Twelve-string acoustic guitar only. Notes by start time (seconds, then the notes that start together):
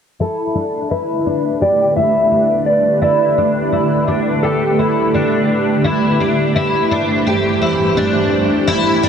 0.20 E4
0.55 D4
0.91 E4
1.26 D4
1.61 G4
1.97 E4
2.31 D4
3.02 E4
3.38 D4
3.72 E4
4.08 D4
4.44 G4
4.79 E4
5.14 D4
5.84 E4
6.20 D4
6.56 E4
6.91 D4
7.27 G4
7.62 E4
7.97 D4
8.68 E4
9.03 D4